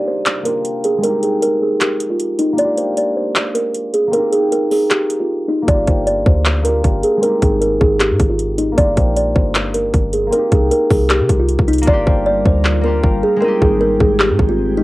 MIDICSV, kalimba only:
0, 0, Header, 1, 2, 480
1, 0, Start_track
1, 0, Tempo, 387097
1, 1283, Time_signature, 4, 2, 24, 8
1, 18395, End_track
2, 0, Start_track
2, 0, Title_t, "Kalimba"
2, 0, Program_c, 0, 108
2, 91, Note_on_c, 0, 72, 77
2, 539, Note_off_c, 0, 72, 0
2, 558, Note_on_c, 0, 70, 80
2, 1012, Note_off_c, 0, 70, 0
2, 1048, Note_on_c, 0, 68, 79
2, 1261, Note_off_c, 0, 68, 0
2, 1282, Note_on_c, 0, 70, 96
2, 1497, Note_off_c, 0, 70, 0
2, 1526, Note_on_c, 0, 68, 72
2, 1740, Note_off_c, 0, 68, 0
2, 1763, Note_on_c, 0, 70, 95
2, 1978, Note_off_c, 0, 70, 0
2, 2005, Note_on_c, 0, 68, 70
2, 2219, Note_off_c, 0, 68, 0
2, 2245, Note_on_c, 0, 67, 84
2, 2589, Note_off_c, 0, 67, 0
2, 2606, Note_on_c, 0, 65, 76
2, 2940, Note_off_c, 0, 65, 0
2, 2962, Note_on_c, 0, 63, 90
2, 3177, Note_off_c, 0, 63, 0
2, 3206, Note_on_c, 0, 74, 109
2, 3419, Note_off_c, 0, 74, 0
2, 3445, Note_on_c, 0, 72, 74
2, 3659, Note_off_c, 0, 72, 0
2, 3686, Note_on_c, 0, 74, 75
2, 3899, Note_off_c, 0, 74, 0
2, 3922, Note_on_c, 0, 72, 74
2, 4374, Note_off_c, 0, 72, 0
2, 4396, Note_on_c, 0, 70, 84
2, 4851, Note_off_c, 0, 70, 0
2, 4882, Note_on_c, 0, 68, 70
2, 5098, Note_off_c, 0, 68, 0
2, 5123, Note_on_c, 0, 70, 97
2, 5338, Note_off_c, 0, 70, 0
2, 5357, Note_on_c, 0, 68, 78
2, 5575, Note_off_c, 0, 68, 0
2, 5604, Note_on_c, 0, 70, 91
2, 5819, Note_off_c, 0, 70, 0
2, 5844, Note_on_c, 0, 68, 75
2, 6059, Note_off_c, 0, 68, 0
2, 6083, Note_on_c, 0, 67, 81
2, 6428, Note_off_c, 0, 67, 0
2, 6449, Note_on_c, 0, 65, 75
2, 6782, Note_off_c, 0, 65, 0
2, 6799, Note_on_c, 0, 63, 88
2, 7016, Note_off_c, 0, 63, 0
2, 7048, Note_on_c, 0, 74, 97
2, 7261, Note_off_c, 0, 74, 0
2, 7284, Note_on_c, 0, 72, 77
2, 7499, Note_off_c, 0, 72, 0
2, 7522, Note_on_c, 0, 74, 83
2, 7737, Note_off_c, 0, 74, 0
2, 7770, Note_on_c, 0, 72, 76
2, 8218, Note_off_c, 0, 72, 0
2, 8238, Note_on_c, 0, 70, 82
2, 8692, Note_off_c, 0, 70, 0
2, 8728, Note_on_c, 0, 68, 78
2, 8941, Note_off_c, 0, 68, 0
2, 8962, Note_on_c, 0, 70, 99
2, 9177, Note_off_c, 0, 70, 0
2, 9206, Note_on_c, 0, 68, 70
2, 9419, Note_off_c, 0, 68, 0
2, 9440, Note_on_c, 0, 70, 92
2, 9656, Note_off_c, 0, 70, 0
2, 9683, Note_on_c, 0, 68, 73
2, 9898, Note_off_c, 0, 68, 0
2, 9922, Note_on_c, 0, 67, 82
2, 10268, Note_off_c, 0, 67, 0
2, 10287, Note_on_c, 0, 65, 77
2, 10620, Note_off_c, 0, 65, 0
2, 10638, Note_on_c, 0, 63, 88
2, 10855, Note_off_c, 0, 63, 0
2, 10884, Note_on_c, 0, 74, 114
2, 11098, Note_off_c, 0, 74, 0
2, 11124, Note_on_c, 0, 72, 78
2, 11338, Note_off_c, 0, 72, 0
2, 11364, Note_on_c, 0, 74, 77
2, 11579, Note_off_c, 0, 74, 0
2, 11601, Note_on_c, 0, 72, 77
2, 12053, Note_off_c, 0, 72, 0
2, 12077, Note_on_c, 0, 70, 80
2, 12532, Note_off_c, 0, 70, 0
2, 12564, Note_on_c, 0, 68, 68
2, 12778, Note_off_c, 0, 68, 0
2, 12801, Note_on_c, 0, 70, 101
2, 13017, Note_off_c, 0, 70, 0
2, 13038, Note_on_c, 0, 68, 81
2, 13255, Note_off_c, 0, 68, 0
2, 13283, Note_on_c, 0, 70, 94
2, 13498, Note_off_c, 0, 70, 0
2, 13522, Note_on_c, 0, 68, 75
2, 13737, Note_off_c, 0, 68, 0
2, 13761, Note_on_c, 0, 67, 83
2, 14108, Note_off_c, 0, 67, 0
2, 14129, Note_on_c, 0, 65, 72
2, 14461, Note_off_c, 0, 65, 0
2, 14480, Note_on_c, 0, 63, 86
2, 14696, Note_off_c, 0, 63, 0
2, 14729, Note_on_c, 0, 74, 101
2, 14941, Note_off_c, 0, 74, 0
2, 14965, Note_on_c, 0, 72, 80
2, 15179, Note_off_c, 0, 72, 0
2, 15203, Note_on_c, 0, 74, 82
2, 15418, Note_off_c, 0, 74, 0
2, 15450, Note_on_c, 0, 72, 78
2, 15898, Note_off_c, 0, 72, 0
2, 15919, Note_on_c, 0, 70, 81
2, 16372, Note_off_c, 0, 70, 0
2, 16409, Note_on_c, 0, 68, 81
2, 16621, Note_off_c, 0, 68, 0
2, 16642, Note_on_c, 0, 70, 95
2, 16857, Note_off_c, 0, 70, 0
2, 16888, Note_on_c, 0, 68, 74
2, 17100, Note_off_c, 0, 68, 0
2, 17123, Note_on_c, 0, 70, 95
2, 17338, Note_off_c, 0, 70, 0
2, 17365, Note_on_c, 0, 68, 70
2, 17579, Note_off_c, 0, 68, 0
2, 17604, Note_on_c, 0, 67, 81
2, 17949, Note_off_c, 0, 67, 0
2, 17966, Note_on_c, 0, 65, 77
2, 18300, Note_off_c, 0, 65, 0
2, 18322, Note_on_c, 0, 63, 89
2, 18395, Note_off_c, 0, 63, 0
2, 18395, End_track
0, 0, End_of_file